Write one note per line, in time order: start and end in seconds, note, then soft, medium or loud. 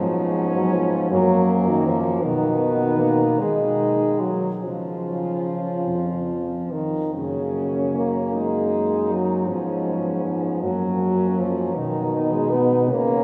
0.00 1.12 G#2 medium
0.00 0.56 F3 medium
0.00 1.11 B3 medium
0.00 1.14 C#4 medium
0.55 0.75 F#3 medium
0.73 1.10 F3 medium
1.11 2.23 F#2 medium
1.11 1.69 F#3 loud
1.11 2.23 A#3 medium
1.68 1.89 D#3 medium
1.87 2.23 F3 medium
2.22 3.37 B2 medium
2.22 3.00 D#3 medium
2.22 3.40 B3 medium
2.22 4.32 D#4 medium
2.98 3.40 A#3 medium
3.39 4.31 D#3 medium
3.39 4.22 G#3 medium
3.39 4.32 D#4 medium
4.20 4.49 F#3 medium
4.61 5.89 C#3 medium
4.61 6.73 F3 medium
4.61 6.76 C#4 medium
4.61 6.47 F4 medium
5.88 6.81 F2 soft
6.71 7.13 D#3 medium
7.14 9.49 F#2 soft
7.14 7.93 C#3 medium
7.14 9.46 A#3 medium
7.14 8.35 C#4 medium
7.94 8.33 A#3 medium
8.34 9.13 G#3 medium
8.34 9.49 D#4 medium
9.12 9.49 F#3 medium
9.48 10.64 G#2 medium
9.48 10.24 F3 medium
9.48 10.65 B3 soft
9.48 10.63 C#4 medium
10.25 10.64 F3 medium
10.62 11.75 F#2 medium
10.62 11.40 F#3 medium
10.62 11.76 A#3 soft
10.62 11.79 C#4 medium
11.39 11.76 F3 medium
11.75 12.90 B2 medium
11.75 12.33 D#3 medium
11.75 12.85 B3 medium
11.75 12.91 D#4 medium
12.31 12.51 G#3 medium
12.50 12.89 B3 medium
12.88 13.24 C#3 medium
12.88 13.24 A#3 medium
12.88 13.24 B3 medium
12.88 13.24 C#4 medium